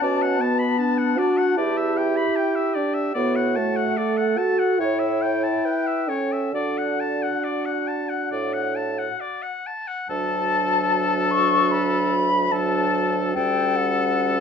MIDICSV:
0, 0, Header, 1, 6, 480
1, 0, Start_track
1, 0, Key_signature, 2, "major"
1, 0, Tempo, 780234
1, 17, Time_signature, 4, 2, 24, 8
1, 1937, Tempo, 823045
1, 2897, Tempo, 851064
1, 3377, Tempo, 890208
1, 5777, Tempo, 813008
1, 8318, End_track
2, 0, Start_track
2, 0, Title_t, "Flute"
2, 0, Program_c, 0, 73
2, 0, Note_on_c, 0, 81, 57
2, 1257, Note_off_c, 0, 81, 0
2, 1444, Note_on_c, 0, 79, 49
2, 1933, Note_on_c, 0, 78, 52
2, 1942, Note_off_c, 0, 79, 0
2, 2894, Note_on_c, 0, 79, 48
2, 2902, Note_off_c, 0, 78, 0
2, 3855, Note_off_c, 0, 79, 0
2, 3858, Note_on_c, 0, 78, 44
2, 5573, Note_off_c, 0, 78, 0
2, 5771, Note_on_c, 0, 81, 83
2, 6493, Note_on_c, 0, 85, 75
2, 6502, Note_off_c, 0, 81, 0
2, 6733, Note_on_c, 0, 83, 70
2, 6742, Note_off_c, 0, 85, 0
2, 7207, Note_on_c, 0, 81, 81
2, 7215, Note_off_c, 0, 83, 0
2, 7688, Note_off_c, 0, 81, 0
2, 7692, Note_on_c, 0, 79, 73
2, 7939, Note_on_c, 0, 78, 78
2, 7947, Note_off_c, 0, 79, 0
2, 8318, Note_off_c, 0, 78, 0
2, 8318, End_track
3, 0, Start_track
3, 0, Title_t, "Oboe"
3, 0, Program_c, 1, 68
3, 18, Note_on_c, 1, 74, 55
3, 137, Note_on_c, 1, 78, 48
3, 146, Note_off_c, 1, 74, 0
3, 255, Note_on_c, 1, 81, 53
3, 264, Note_off_c, 1, 78, 0
3, 364, Note_on_c, 1, 83, 47
3, 374, Note_off_c, 1, 81, 0
3, 486, Note_on_c, 1, 81, 47
3, 495, Note_off_c, 1, 83, 0
3, 605, Note_on_c, 1, 78, 43
3, 614, Note_off_c, 1, 81, 0
3, 729, Note_on_c, 1, 74, 46
3, 738, Note_off_c, 1, 78, 0
3, 848, Note_on_c, 1, 78, 44
3, 857, Note_off_c, 1, 74, 0
3, 965, Note_off_c, 1, 78, 0
3, 968, Note_on_c, 1, 74, 50
3, 1092, Note_on_c, 1, 76, 43
3, 1102, Note_off_c, 1, 74, 0
3, 1215, Note_on_c, 1, 79, 43
3, 1224, Note_off_c, 1, 76, 0
3, 1334, Note_on_c, 1, 83, 45
3, 1343, Note_off_c, 1, 79, 0
3, 1455, Note_on_c, 1, 79, 44
3, 1464, Note_off_c, 1, 83, 0
3, 1572, Note_on_c, 1, 76, 44
3, 1581, Note_off_c, 1, 79, 0
3, 1691, Note_on_c, 1, 74, 42
3, 1700, Note_off_c, 1, 76, 0
3, 1812, Note_on_c, 1, 76, 44
3, 1821, Note_off_c, 1, 74, 0
3, 1932, Note_off_c, 1, 76, 0
3, 1936, Note_on_c, 1, 74, 50
3, 2060, Note_on_c, 1, 78, 44
3, 2069, Note_off_c, 1, 74, 0
3, 2177, Note_on_c, 1, 81, 44
3, 2186, Note_off_c, 1, 78, 0
3, 2297, Note_on_c, 1, 78, 43
3, 2305, Note_off_c, 1, 81, 0
3, 2418, Note_on_c, 1, 74, 43
3, 2427, Note_off_c, 1, 78, 0
3, 2535, Note_on_c, 1, 78, 40
3, 2544, Note_off_c, 1, 74, 0
3, 2655, Note_on_c, 1, 81, 43
3, 2664, Note_off_c, 1, 78, 0
3, 2778, Note_on_c, 1, 78, 41
3, 2787, Note_off_c, 1, 81, 0
3, 2898, Note_off_c, 1, 78, 0
3, 2903, Note_on_c, 1, 73, 43
3, 3011, Note_on_c, 1, 76, 39
3, 3019, Note_off_c, 1, 73, 0
3, 3138, Note_on_c, 1, 79, 35
3, 3146, Note_off_c, 1, 76, 0
3, 3259, Note_on_c, 1, 81, 35
3, 3268, Note_off_c, 1, 79, 0
3, 3380, Note_on_c, 1, 79, 39
3, 3388, Note_off_c, 1, 81, 0
3, 3499, Note_on_c, 1, 76, 36
3, 3507, Note_off_c, 1, 79, 0
3, 3618, Note_on_c, 1, 73, 35
3, 3626, Note_off_c, 1, 76, 0
3, 3744, Note_on_c, 1, 76, 34
3, 3752, Note_off_c, 1, 73, 0
3, 3859, Note_off_c, 1, 76, 0
3, 3862, Note_on_c, 1, 74, 39
3, 3990, Note_on_c, 1, 78, 35
3, 3998, Note_off_c, 1, 74, 0
3, 4110, Note_on_c, 1, 81, 39
3, 4118, Note_off_c, 1, 78, 0
3, 4231, Note_on_c, 1, 78, 34
3, 4239, Note_off_c, 1, 81, 0
3, 4345, Note_on_c, 1, 74, 36
3, 4354, Note_off_c, 1, 78, 0
3, 4463, Note_on_c, 1, 78, 33
3, 4471, Note_off_c, 1, 74, 0
3, 4581, Note_on_c, 1, 81, 34
3, 4589, Note_off_c, 1, 78, 0
3, 4697, Note_on_c, 1, 78, 32
3, 4705, Note_off_c, 1, 81, 0
3, 4811, Note_off_c, 1, 78, 0
3, 4815, Note_on_c, 1, 74, 37
3, 4936, Note_on_c, 1, 78, 33
3, 4944, Note_off_c, 1, 74, 0
3, 5057, Note_on_c, 1, 81, 30
3, 5065, Note_off_c, 1, 78, 0
3, 5179, Note_on_c, 1, 78, 34
3, 5188, Note_off_c, 1, 81, 0
3, 5299, Note_on_c, 1, 74, 33
3, 5307, Note_off_c, 1, 78, 0
3, 5416, Note_on_c, 1, 78, 33
3, 5424, Note_off_c, 1, 74, 0
3, 5545, Note_on_c, 1, 81, 34
3, 5553, Note_off_c, 1, 78, 0
3, 5659, Note_on_c, 1, 78, 35
3, 5667, Note_off_c, 1, 81, 0
3, 5775, Note_off_c, 1, 78, 0
3, 5778, Note_on_c, 1, 69, 55
3, 7113, Note_off_c, 1, 69, 0
3, 7214, Note_on_c, 1, 69, 52
3, 7691, Note_off_c, 1, 69, 0
3, 7706, Note_on_c, 1, 69, 59
3, 8318, Note_off_c, 1, 69, 0
3, 8318, End_track
4, 0, Start_track
4, 0, Title_t, "Clarinet"
4, 0, Program_c, 2, 71
4, 8, Note_on_c, 2, 66, 56
4, 457, Note_off_c, 2, 66, 0
4, 478, Note_on_c, 2, 62, 57
4, 965, Note_on_c, 2, 67, 69
4, 974, Note_off_c, 2, 62, 0
4, 1937, Note_off_c, 2, 67, 0
4, 1942, Note_on_c, 2, 66, 56
4, 2420, Note_on_c, 2, 69, 57
4, 2429, Note_off_c, 2, 66, 0
4, 2898, Note_on_c, 2, 73, 52
4, 2907, Note_off_c, 2, 69, 0
4, 3381, Note_on_c, 2, 71, 45
4, 3389, Note_off_c, 2, 73, 0
4, 3613, Note_on_c, 2, 69, 45
4, 3621, Note_off_c, 2, 71, 0
4, 3859, Note_on_c, 2, 66, 43
4, 3867, Note_off_c, 2, 69, 0
4, 5544, Note_off_c, 2, 66, 0
4, 5769, Note_on_c, 2, 62, 57
4, 7187, Note_off_c, 2, 62, 0
4, 7212, Note_on_c, 2, 62, 55
4, 7691, Note_off_c, 2, 62, 0
4, 7703, Note_on_c, 2, 61, 61
4, 8318, Note_off_c, 2, 61, 0
4, 8318, End_track
5, 0, Start_track
5, 0, Title_t, "French horn"
5, 0, Program_c, 3, 60
5, 10, Note_on_c, 3, 61, 63
5, 243, Note_on_c, 3, 59, 75
5, 252, Note_off_c, 3, 61, 0
5, 723, Note_on_c, 3, 66, 73
5, 732, Note_off_c, 3, 59, 0
5, 970, Note_on_c, 3, 64, 80
5, 979, Note_off_c, 3, 66, 0
5, 1698, Note_on_c, 3, 62, 64
5, 1707, Note_off_c, 3, 64, 0
5, 1936, Note_off_c, 3, 62, 0
5, 1939, Note_on_c, 3, 59, 60
5, 2183, Note_on_c, 3, 57, 54
5, 2192, Note_off_c, 3, 59, 0
5, 2658, Note_on_c, 3, 66, 67
5, 2667, Note_off_c, 3, 57, 0
5, 2896, Note_on_c, 3, 64, 74
5, 2905, Note_off_c, 3, 66, 0
5, 3613, Note_on_c, 3, 61, 56
5, 3621, Note_off_c, 3, 64, 0
5, 3855, Note_on_c, 3, 62, 51
5, 3863, Note_off_c, 3, 61, 0
5, 5297, Note_off_c, 3, 62, 0
5, 5777, Note_on_c, 3, 54, 53
5, 7191, Note_off_c, 3, 54, 0
5, 7210, Note_on_c, 3, 54, 59
5, 7697, Note_on_c, 3, 55, 58
5, 7706, Note_off_c, 3, 54, 0
5, 8318, Note_off_c, 3, 55, 0
5, 8318, End_track
6, 0, Start_track
6, 0, Title_t, "Bassoon"
6, 0, Program_c, 4, 70
6, 15, Note_on_c, 4, 47, 58
6, 406, Note_off_c, 4, 47, 0
6, 970, Note_on_c, 4, 40, 55
6, 1372, Note_off_c, 4, 40, 0
6, 1941, Note_on_c, 4, 45, 57
6, 2340, Note_off_c, 4, 45, 0
6, 2900, Note_on_c, 4, 45, 51
6, 3298, Note_off_c, 4, 45, 0
6, 3860, Note_on_c, 4, 50, 44
6, 4265, Note_off_c, 4, 50, 0
6, 4820, Note_on_c, 4, 45, 46
6, 5218, Note_off_c, 4, 45, 0
6, 5778, Note_on_c, 4, 38, 56
6, 7678, Note_off_c, 4, 38, 0
6, 7702, Note_on_c, 4, 38, 61
6, 8318, Note_off_c, 4, 38, 0
6, 8318, End_track
0, 0, End_of_file